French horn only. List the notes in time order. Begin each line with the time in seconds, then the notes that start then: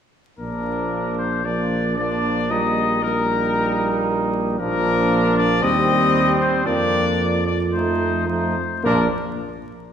0.39 A#3
1.46 A#3
1.99 A#3
2.51 A#3
3.05 A#3
4.60 A#3
5.63 C4
6.67 A#3
7.74 A3
8.28 A3
8.84 A#3